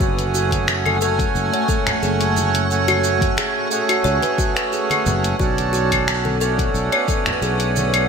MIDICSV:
0, 0, Header, 1, 6, 480
1, 0, Start_track
1, 0, Key_signature, 3, "minor"
1, 0, Tempo, 674157
1, 2, Time_signature, 4, 2, 24, 8
1, 5757, End_track
2, 0, Start_track
2, 0, Title_t, "Ambient pad"
2, 0, Program_c, 0, 92
2, 0, Note_on_c, 0, 57, 79
2, 0, Note_on_c, 0, 78, 72
2, 0, Note_on_c, 0, 85, 86
2, 1, Note_on_c, 0, 80, 76
2, 1902, Note_off_c, 0, 80, 0
2, 3812, Note_off_c, 0, 57, 0
2, 3812, Note_off_c, 0, 78, 0
2, 3812, Note_off_c, 0, 85, 0
2, 3845, Note_on_c, 0, 78, 75
2, 3849, Note_on_c, 0, 71, 81
2, 5757, Note_off_c, 0, 71, 0
2, 5757, Note_off_c, 0, 78, 0
2, 5757, End_track
3, 0, Start_track
3, 0, Title_t, "Kalimba"
3, 0, Program_c, 1, 108
3, 5, Note_on_c, 1, 66, 80
3, 232, Note_off_c, 1, 66, 0
3, 248, Note_on_c, 1, 66, 72
3, 366, Note_off_c, 1, 66, 0
3, 615, Note_on_c, 1, 69, 75
3, 714, Note_off_c, 1, 69, 0
3, 727, Note_on_c, 1, 69, 90
3, 845, Note_off_c, 1, 69, 0
3, 1093, Note_on_c, 1, 73, 72
3, 1193, Note_off_c, 1, 73, 0
3, 1203, Note_on_c, 1, 69, 73
3, 1431, Note_off_c, 1, 69, 0
3, 1445, Note_on_c, 1, 68, 76
3, 1564, Note_off_c, 1, 68, 0
3, 2052, Note_on_c, 1, 66, 94
3, 2158, Note_off_c, 1, 66, 0
3, 2407, Note_on_c, 1, 68, 75
3, 2525, Note_off_c, 1, 68, 0
3, 2646, Note_on_c, 1, 78, 67
3, 2758, Note_off_c, 1, 78, 0
3, 2771, Note_on_c, 1, 66, 70
3, 2877, Note_off_c, 1, 66, 0
3, 2879, Note_on_c, 1, 73, 89
3, 2953, Note_off_c, 1, 73, 0
3, 3008, Note_on_c, 1, 71, 71
3, 3110, Note_off_c, 1, 71, 0
3, 3122, Note_on_c, 1, 66, 77
3, 3236, Note_off_c, 1, 66, 0
3, 3249, Note_on_c, 1, 71, 77
3, 3357, Note_off_c, 1, 71, 0
3, 3366, Note_on_c, 1, 68, 75
3, 3485, Note_off_c, 1, 68, 0
3, 3841, Note_on_c, 1, 66, 78
3, 4070, Note_off_c, 1, 66, 0
3, 4080, Note_on_c, 1, 66, 79
3, 4201, Note_off_c, 1, 66, 0
3, 4450, Note_on_c, 1, 69, 70
3, 4551, Note_off_c, 1, 69, 0
3, 4566, Note_on_c, 1, 69, 89
3, 4685, Note_off_c, 1, 69, 0
3, 4932, Note_on_c, 1, 73, 80
3, 5032, Note_off_c, 1, 73, 0
3, 5044, Note_on_c, 1, 69, 68
3, 5272, Note_off_c, 1, 69, 0
3, 5286, Note_on_c, 1, 68, 77
3, 5405, Note_off_c, 1, 68, 0
3, 5757, End_track
4, 0, Start_track
4, 0, Title_t, "Harmonium"
4, 0, Program_c, 2, 20
4, 0, Note_on_c, 2, 57, 101
4, 0, Note_on_c, 2, 61, 96
4, 10, Note_on_c, 2, 66, 90
4, 17, Note_on_c, 2, 68, 111
4, 688, Note_off_c, 2, 57, 0
4, 693, Note_off_c, 2, 61, 0
4, 699, Note_off_c, 2, 66, 0
4, 702, Note_off_c, 2, 68, 0
4, 712, Note_on_c, 2, 57, 103
4, 721, Note_on_c, 2, 61, 100
4, 731, Note_on_c, 2, 66, 95
4, 739, Note_on_c, 2, 80, 120
4, 1890, Note_off_c, 2, 57, 0
4, 1894, Note_off_c, 2, 61, 0
4, 1899, Note_off_c, 2, 66, 0
4, 1903, Note_off_c, 2, 80, 0
4, 1911, Note_on_c, 2, 57, 104
4, 1920, Note_on_c, 2, 61, 91
4, 1929, Note_on_c, 2, 66, 94
4, 1936, Note_on_c, 2, 80, 112
4, 2609, Note_off_c, 2, 57, 0
4, 2614, Note_off_c, 2, 61, 0
4, 2618, Note_off_c, 2, 66, 0
4, 2622, Note_off_c, 2, 80, 0
4, 2626, Note_on_c, 2, 57, 109
4, 2638, Note_on_c, 2, 61, 103
4, 2646, Note_on_c, 2, 66, 99
4, 2656, Note_on_c, 2, 68, 121
4, 3807, Note_off_c, 2, 57, 0
4, 3813, Note_off_c, 2, 61, 0
4, 3817, Note_off_c, 2, 66, 0
4, 3822, Note_off_c, 2, 68, 0
4, 3831, Note_on_c, 2, 61, 105
4, 3838, Note_on_c, 2, 62, 93
4, 3848, Note_on_c, 2, 66, 95
4, 3857, Note_on_c, 2, 69, 111
4, 4529, Note_off_c, 2, 61, 0
4, 4533, Note_off_c, 2, 62, 0
4, 4538, Note_off_c, 2, 66, 0
4, 4542, Note_off_c, 2, 69, 0
4, 4550, Note_on_c, 2, 61, 107
4, 4560, Note_on_c, 2, 62, 104
4, 4570, Note_on_c, 2, 66, 99
4, 4580, Note_on_c, 2, 57, 112
4, 5729, Note_off_c, 2, 61, 0
4, 5734, Note_off_c, 2, 62, 0
4, 5739, Note_off_c, 2, 66, 0
4, 5744, Note_off_c, 2, 57, 0
4, 5757, End_track
5, 0, Start_track
5, 0, Title_t, "Fretless electric bass"
5, 0, Program_c, 3, 35
5, 1, Note_on_c, 3, 30, 90
5, 919, Note_off_c, 3, 30, 0
5, 963, Note_on_c, 3, 30, 96
5, 1060, Note_off_c, 3, 30, 0
5, 1443, Note_on_c, 3, 30, 81
5, 2361, Note_off_c, 3, 30, 0
5, 2881, Note_on_c, 3, 37, 92
5, 2979, Note_off_c, 3, 37, 0
5, 3604, Note_on_c, 3, 30, 90
5, 3791, Note_off_c, 3, 30, 0
5, 3842, Note_on_c, 3, 35, 98
5, 4760, Note_off_c, 3, 35, 0
5, 4801, Note_on_c, 3, 35, 92
5, 4899, Note_off_c, 3, 35, 0
5, 5280, Note_on_c, 3, 35, 85
5, 5757, Note_off_c, 3, 35, 0
5, 5757, End_track
6, 0, Start_track
6, 0, Title_t, "Drums"
6, 1, Note_on_c, 9, 36, 107
6, 5, Note_on_c, 9, 82, 45
6, 72, Note_off_c, 9, 36, 0
6, 76, Note_off_c, 9, 82, 0
6, 129, Note_on_c, 9, 63, 32
6, 132, Note_on_c, 9, 42, 41
6, 132, Note_on_c, 9, 82, 32
6, 201, Note_off_c, 9, 63, 0
6, 203, Note_off_c, 9, 42, 0
6, 203, Note_off_c, 9, 82, 0
6, 246, Note_on_c, 9, 82, 73
6, 317, Note_off_c, 9, 82, 0
6, 363, Note_on_c, 9, 63, 70
6, 368, Note_on_c, 9, 36, 59
6, 372, Note_on_c, 9, 42, 50
6, 373, Note_on_c, 9, 82, 30
6, 434, Note_off_c, 9, 63, 0
6, 439, Note_off_c, 9, 36, 0
6, 444, Note_off_c, 9, 42, 0
6, 444, Note_off_c, 9, 82, 0
6, 482, Note_on_c, 9, 62, 47
6, 484, Note_on_c, 9, 26, 72
6, 484, Note_on_c, 9, 82, 43
6, 553, Note_off_c, 9, 62, 0
6, 555, Note_off_c, 9, 26, 0
6, 556, Note_off_c, 9, 82, 0
6, 607, Note_on_c, 9, 63, 58
6, 609, Note_on_c, 9, 75, 70
6, 678, Note_off_c, 9, 63, 0
6, 680, Note_off_c, 9, 75, 0
6, 721, Note_on_c, 9, 82, 74
6, 792, Note_off_c, 9, 82, 0
6, 848, Note_on_c, 9, 36, 94
6, 851, Note_on_c, 9, 42, 47
6, 851, Note_on_c, 9, 82, 32
6, 919, Note_off_c, 9, 36, 0
6, 922, Note_off_c, 9, 42, 0
6, 923, Note_off_c, 9, 82, 0
6, 964, Note_on_c, 9, 82, 43
6, 1035, Note_off_c, 9, 82, 0
6, 1094, Note_on_c, 9, 42, 28
6, 1165, Note_off_c, 9, 42, 0
6, 1200, Note_on_c, 9, 36, 107
6, 1203, Note_on_c, 9, 82, 80
6, 1272, Note_off_c, 9, 36, 0
6, 1274, Note_off_c, 9, 82, 0
6, 1329, Note_on_c, 9, 26, 65
6, 1329, Note_on_c, 9, 42, 53
6, 1329, Note_on_c, 9, 75, 70
6, 1329, Note_on_c, 9, 82, 30
6, 1333, Note_on_c, 9, 64, 87
6, 1400, Note_off_c, 9, 26, 0
6, 1400, Note_off_c, 9, 42, 0
6, 1400, Note_off_c, 9, 75, 0
6, 1401, Note_off_c, 9, 82, 0
6, 1404, Note_off_c, 9, 64, 0
6, 1443, Note_on_c, 9, 82, 42
6, 1514, Note_off_c, 9, 82, 0
6, 1571, Note_on_c, 9, 42, 39
6, 1571, Note_on_c, 9, 82, 29
6, 1642, Note_off_c, 9, 42, 0
6, 1642, Note_off_c, 9, 82, 0
6, 1684, Note_on_c, 9, 63, 65
6, 1686, Note_on_c, 9, 82, 72
6, 1755, Note_off_c, 9, 63, 0
6, 1757, Note_off_c, 9, 82, 0
6, 1809, Note_on_c, 9, 62, 32
6, 1814, Note_on_c, 9, 42, 46
6, 1814, Note_on_c, 9, 82, 32
6, 1880, Note_off_c, 9, 62, 0
6, 1885, Note_off_c, 9, 42, 0
6, 1885, Note_off_c, 9, 82, 0
6, 1928, Note_on_c, 9, 82, 41
6, 1999, Note_off_c, 9, 82, 0
6, 2047, Note_on_c, 9, 63, 35
6, 2053, Note_on_c, 9, 42, 44
6, 2053, Note_on_c, 9, 75, 80
6, 2053, Note_on_c, 9, 82, 28
6, 2118, Note_off_c, 9, 63, 0
6, 2124, Note_off_c, 9, 42, 0
6, 2124, Note_off_c, 9, 75, 0
6, 2124, Note_off_c, 9, 82, 0
6, 2164, Note_on_c, 9, 82, 72
6, 2235, Note_off_c, 9, 82, 0
6, 2288, Note_on_c, 9, 36, 92
6, 2290, Note_on_c, 9, 63, 78
6, 2293, Note_on_c, 9, 42, 51
6, 2293, Note_on_c, 9, 82, 32
6, 2359, Note_off_c, 9, 36, 0
6, 2361, Note_off_c, 9, 63, 0
6, 2364, Note_off_c, 9, 42, 0
6, 2365, Note_off_c, 9, 82, 0
6, 2399, Note_on_c, 9, 62, 44
6, 2405, Note_on_c, 9, 26, 73
6, 2406, Note_on_c, 9, 82, 43
6, 2470, Note_off_c, 9, 62, 0
6, 2477, Note_off_c, 9, 26, 0
6, 2477, Note_off_c, 9, 82, 0
6, 2645, Note_on_c, 9, 82, 68
6, 2716, Note_off_c, 9, 82, 0
6, 2771, Note_on_c, 9, 42, 50
6, 2771, Note_on_c, 9, 75, 79
6, 2771, Note_on_c, 9, 82, 31
6, 2842, Note_off_c, 9, 42, 0
6, 2842, Note_off_c, 9, 75, 0
6, 2842, Note_off_c, 9, 82, 0
6, 2882, Note_on_c, 9, 82, 39
6, 2953, Note_off_c, 9, 82, 0
6, 3008, Note_on_c, 9, 62, 53
6, 3013, Note_on_c, 9, 42, 28
6, 3013, Note_on_c, 9, 82, 30
6, 3079, Note_off_c, 9, 62, 0
6, 3084, Note_off_c, 9, 42, 0
6, 3085, Note_off_c, 9, 82, 0
6, 3121, Note_on_c, 9, 36, 98
6, 3124, Note_on_c, 9, 82, 74
6, 3192, Note_off_c, 9, 36, 0
6, 3195, Note_off_c, 9, 82, 0
6, 3251, Note_on_c, 9, 26, 70
6, 3251, Note_on_c, 9, 42, 54
6, 3251, Note_on_c, 9, 82, 31
6, 3322, Note_off_c, 9, 26, 0
6, 3322, Note_off_c, 9, 42, 0
6, 3322, Note_off_c, 9, 82, 0
6, 3364, Note_on_c, 9, 82, 41
6, 3435, Note_off_c, 9, 82, 0
6, 3486, Note_on_c, 9, 62, 36
6, 3489, Note_on_c, 9, 63, 49
6, 3495, Note_on_c, 9, 42, 42
6, 3495, Note_on_c, 9, 75, 74
6, 3495, Note_on_c, 9, 82, 28
6, 3557, Note_off_c, 9, 62, 0
6, 3560, Note_off_c, 9, 63, 0
6, 3566, Note_off_c, 9, 42, 0
6, 3566, Note_off_c, 9, 75, 0
6, 3567, Note_off_c, 9, 82, 0
6, 3605, Note_on_c, 9, 82, 65
6, 3608, Note_on_c, 9, 64, 72
6, 3676, Note_off_c, 9, 82, 0
6, 3679, Note_off_c, 9, 64, 0
6, 3734, Note_on_c, 9, 42, 53
6, 3734, Note_on_c, 9, 82, 28
6, 3805, Note_off_c, 9, 42, 0
6, 3805, Note_off_c, 9, 82, 0
6, 3843, Note_on_c, 9, 36, 104
6, 3845, Note_on_c, 9, 82, 40
6, 3914, Note_off_c, 9, 36, 0
6, 3917, Note_off_c, 9, 82, 0
6, 3974, Note_on_c, 9, 42, 44
6, 3975, Note_on_c, 9, 63, 35
6, 3975, Note_on_c, 9, 82, 28
6, 4046, Note_off_c, 9, 42, 0
6, 4046, Note_off_c, 9, 82, 0
6, 4047, Note_off_c, 9, 63, 0
6, 4086, Note_on_c, 9, 82, 70
6, 4157, Note_off_c, 9, 82, 0
6, 4210, Note_on_c, 9, 36, 54
6, 4211, Note_on_c, 9, 63, 67
6, 4214, Note_on_c, 9, 42, 55
6, 4214, Note_on_c, 9, 75, 76
6, 4215, Note_on_c, 9, 82, 31
6, 4281, Note_off_c, 9, 36, 0
6, 4282, Note_off_c, 9, 63, 0
6, 4286, Note_off_c, 9, 42, 0
6, 4286, Note_off_c, 9, 75, 0
6, 4286, Note_off_c, 9, 82, 0
6, 4328, Note_on_c, 9, 26, 75
6, 4328, Note_on_c, 9, 82, 42
6, 4334, Note_on_c, 9, 62, 55
6, 4399, Note_off_c, 9, 26, 0
6, 4399, Note_off_c, 9, 82, 0
6, 4405, Note_off_c, 9, 62, 0
6, 4456, Note_on_c, 9, 63, 58
6, 4527, Note_off_c, 9, 63, 0
6, 4565, Note_on_c, 9, 82, 67
6, 4636, Note_off_c, 9, 82, 0
6, 4690, Note_on_c, 9, 36, 92
6, 4693, Note_on_c, 9, 42, 54
6, 4693, Note_on_c, 9, 82, 31
6, 4761, Note_off_c, 9, 36, 0
6, 4764, Note_off_c, 9, 42, 0
6, 4764, Note_off_c, 9, 82, 0
6, 4804, Note_on_c, 9, 82, 39
6, 4875, Note_off_c, 9, 82, 0
6, 4930, Note_on_c, 9, 42, 28
6, 4930, Note_on_c, 9, 75, 76
6, 5001, Note_off_c, 9, 42, 0
6, 5001, Note_off_c, 9, 75, 0
6, 5043, Note_on_c, 9, 36, 98
6, 5044, Note_on_c, 9, 82, 68
6, 5114, Note_off_c, 9, 36, 0
6, 5115, Note_off_c, 9, 82, 0
6, 5169, Note_on_c, 9, 26, 68
6, 5169, Note_on_c, 9, 42, 56
6, 5169, Note_on_c, 9, 82, 29
6, 5176, Note_on_c, 9, 64, 77
6, 5240, Note_off_c, 9, 26, 0
6, 5240, Note_off_c, 9, 42, 0
6, 5240, Note_off_c, 9, 82, 0
6, 5248, Note_off_c, 9, 64, 0
6, 5285, Note_on_c, 9, 82, 41
6, 5356, Note_off_c, 9, 82, 0
6, 5410, Note_on_c, 9, 42, 46
6, 5410, Note_on_c, 9, 82, 29
6, 5481, Note_off_c, 9, 42, 0
6, 5481, Note_off_c, 9, 82, 0
6, 5526, Note_on_c, 9, 82, 68
6, 5536, Note_on_c, 9, 63, 68
6, 5597, Note_off_c, 9, 82, 0
6, 5607, Note_off_c, 9, 63, 0
6, 5651, Note_on_c, 9, 42, 54
6, 5651, Note_on_c, 9, 75, 80
6, 5651, Note_on_c, 9, 82, 29
6, 5658, Note_on_c, 9, 62, 36
6, 5722, Note_off_c, 9, 42, 0
6, 5722, Note_off_c, 9, 75, 0
6, 5723, Note_off_c, 9, 82, 0
6, 5729, Note_off_c, 9, 62, 0
6, 5757, End_track
0, 0, End_of_file